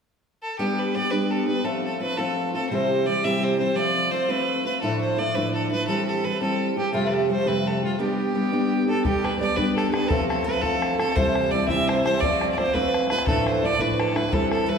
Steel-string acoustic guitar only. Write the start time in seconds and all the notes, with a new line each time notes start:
0.59 G3 B3 D4 G4
0.95 G3 B3 D4 G4
1.11 G3 B3 D4 G4
1.48 B3 D4 G4
1.64 F3 A3 C4 F4
2.00 F3 A3 C4 F4
2.18 F3 A3 C4 F4
2.54 A3 C4 F4
2.71 C3 E3 G3 C4 G4
3.06 E3 G3 C4 G4
3.24 C3 E3 G3 C4 G4
3.60 G3 C4 G4
3.76 F3 A3 C4 F4
4.12 F3 A3 C4 F4
4.29 F3 A3 C4 F4
4.65 A3 C4 F4
4.82 D2 A2 F3 A3 D4 E4
5.19 F3 A3 D4 E4
5.36 D2 A2 F3 A3 D4 E4
5.72 F3 A3 D4 E4
5.88 E3 G3 C4 G4
6.25 E3 G3 C4 G4
6.40 E3 G3 C4 G4
6.77 G3 C4 G4
6.92 F2 C3 F3 G3 A3 G4
7.29 F3 G3 A3 G4
7.46 F2 C3 F3 G3 A3 G4
7.83 F3 G3 A3 G4
7.99 G3 B3 D4 G4
8.35 G3 B3 D4 G4
8.52 G3 B3 D4 G4
8.87 B3 D4 G4
9.05 G3 B3 D4 G4
9.41 G3 B3 D4 G4
9.57 G3 B3 D4 G4
9.93 B3 D4 G4
10.10 F3 A3 C4 F4
10.46 F3 A3 C4 F4
10.63 F3 A3 C4 F4
11.00 A3 C4 F4
11.17 C3 E3 G3 C4 E4
11.53 E3 G3 C4 E4
11.70 C3 E3 G3 C4 E4
12.05 G3 C4 E4
12.23 F3 A3 C4 F4
12.59 F3 A3 C4 F4
12.75 F3 A3 C4 F4
13.11 A3 C4 F4
13.27 D2 A2 F3 A3 D4 E4
13.64 F3 A3 D4 E4
13.81 D2 A2 F3 A3 D4 E4
14.16 F3 A3 D4 E4
14.32 E3 G3 C4 E4
14.68 E3 G3 C4 E4